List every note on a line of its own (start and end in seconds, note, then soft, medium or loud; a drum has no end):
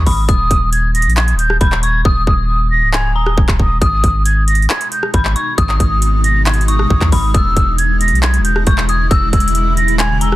0.06 0.28 G#1 loud
0.06 0.27 B5 medium
0.06 0.25 D#6 medium
0.06 kick loud
0.06 open hi-hat medium
0.29 1.57 D#6 loud
0.29 0.70 D#6 loud
0.29 kick loud
0.29 closed hi-hat medium
0.51 1.07 D#1 loud
0.51 kick medium
0.51 closed hi-hat medium
0.73 0.91 G#6 medium
0.73 closed hi-hat medium
0.95 1.13 A#6 medium
0.95 closed hi-hat medium
1.02 1.35 A#1 loud
1.02 closed hi-hat medium
1.10 closed hi-hat soft
1.17 1.35 G#6 medium
1.17 clap loud
1.17 closed hi-hat soft
1.28 closed hi-hat medium
1.33 1.60 D#1 loud
1.39 1.57 G6 medium
1.39 closed hi-hat medium
1.50 cross-stick medium
1.61 2.03 D#1 loud
1.61 1.82 B5 medium
1.61 1.79 G6 medium
1.61 kick loud
1.61 closed hi-hat medium
1.72 clap medium
1.83 2.04 C#6 medium
1.83 2.01 G#6 medium
1.83 closed hi-hat medium
2.05 2.26 D#1 loud
2.05 2.23 D#6 loud
2.05 2.90 D#6 loud
2.05 kick loud
2.27 2.84 D#1 loud
2.27 2.69 D#6 medium
2.27 kick medium
2.71 2.90 A#6 medium
2.82 3.11 C#1 loud
2.93 3.14 G#5 medium
2.93 3.12 G#6 medium
2.93 clap loud
3.10 3.36 D#1 loud
3.15 3.36 A#5 medium
3.15 3.40 D#6 medium
3.26 cross-stick medium
3.38 3.48 D#1 loud
3.38 kick loud
3.48 3.59 D#1 loud
3.48 kick loud
3.48 cross-stick medium
3.48 clap medium
3.59 3.81 D#1 loud
3.59 3.78 D#6 medium
3.59 kick loud
3.81 4.03 G#1 loud
3.81 7.31 B2 medium
3.81 7.31 G#3 medium
3.81 7.31 D#4 loud
3.81 5.10 D#6 loud
3.81 4.23 D#6 loud
3.81 kick loud
3.81 closed hi-hat medium
4.04 4.67 G#1 loud
4.04 kick medium
4.04 closed hi-hat medium
4.26 4.44 G#6 medium
4.26 closed hi-hat medium
4.48 4.66 A#6 medium
4.48 closed hi-hat medium
4.55 closed hi-hat medium
4.62 closed hi-hat soft
4.70 4.88 G#6 medium
4.70 clap loud
4.70 closed hi-hat soft
4.81 closed hi-hat medium
4.92 5.10 G6 medium
4.92 closed hi-hat medium
5.03 cross-stick medium
5.14 5.35 G#1 loud
5.14 5.35 B5 medium
5.14 5.32 G6 medium
5.14 kick loud
5.14 closed hi-hat medium
5.25 clap medium
5.36 5.57 C#6 medium
5.36 5.54 G#6 medium
5.36 closed hi-hat medium
5.58 5.79 G#1 loud
5.58 6.64 D#6 loud
5.58 5.76 D#6 loud
5.58 kick loud
5.58 closed hi-hat medium
5.69 clap medium
5.80 6.86 G#1 loud
5.80 6.22 D#6 medium
5.80 kick medium
5.80 closed hi-hat medium
6.02 closed hi-hat medium
6.24 6.42 A#6 medium
6.24 closed hi-hat medium
6.46 6.65 G#6 medium
6.46 clap loud
6.46 closed hi-hat medium
6.54 closed hi-hat medium
6.61 closed hi-hat medium
6.68 7.10 C#6 medium
6.68 7.10 D#6 medium
6.68 closed hi-hat medium
6.79 cross-stick medium
6.90 7.01 G#1 loud
6.90 kick loud
7.01 7.12 D#2 loud
7.01 kick loud
7.01 clap medium
7.12 7.34 G#1 loud
7.12 7.33 B5 medium
7.12 7.31 D#6 medium
7.12 kick loud
7.12 open hi-hat medium
7.34 7.56 E1 loud
7.34 10.36 C#3 medium
7.34 10.36 G#3 medium
7.34 10.36 E4 loud
7.34 8.63 D#6 loud
7.34 7.76 E6 loud
7.34 kick loud
7.34 closed hi-hat medium
7.57 8.13 E1 loud
7.57 kick medium
7.57 closed hi-hat medium
7.78 7.97 G#6 medium
7.78 closed hi-hat medium
8.01 8.19 A#6 medium
8.01 closed hi-hat medium
8.08 8.41 B1 medium
8.08 closed hi-hat medium
8.15 closed hi-hat soft
8.23 8.41 G#6 loud
8.23 clap loud
8.23 closed hi-hat soft
8.34 closed hi-hat medium
8.39 8.65 E1 loud
8.45 8.63 G6 medium
8.45 closed hi-hat medium
8.56 cross-stick medium
8.67 9.09 E1 loud
8.67 8.88 C#6 medium
8.67 8.85 G6 medium
8.67 kick loud
8.67 closed hi-hat medium
8.78 clap medium
8.89 9.10 D#6 medium
8.89 9.07 G#6 medium
8.89 closed hi-hat medium
9.11 9.32 E1 loud
9.11 9.95 E6 loud
9.11 9.29 E6 loud
9.11 kick loud
9.11 closed hi-hat medium
9.33 9.90 E1 loud
9.33 9.74 E6 medium
9.33 kick medium
9.33 closed hi-hat medium
9.40 closed hi-hat medium
9.48 closed hi-hat medium
9.55 closed hi-hat medium
9.77 9.95 A#6 medium
9.77 closed hi-hat medium
9.88 10.17 D#1 loud
9.88 closed hi-hat soft
9.99 10.20 G#5 medium
9.99 10.18 G#6 medium
9.99 clap loud
9.99 closed hi-hat medium
10.16 10.36 E1 loud
10.21 10.36 A#5 medium
10.21 10.36 E6 medium
10.21 closed hi-hat medium
10.32 cross-stick medium